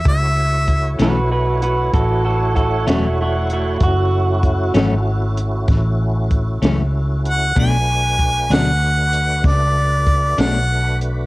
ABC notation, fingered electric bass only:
X:1
M:12/8
L:1/8
Q:3/8=64
K:F#m
V:1 name="Fingered electric bass" clef=bass
C,,3 B,,,3 A,,,3 E,,,3 | F,,,3 G,,,3 A,,,3 C,,3 | B,,,3 D,,3 C,,3 B,,,3 |]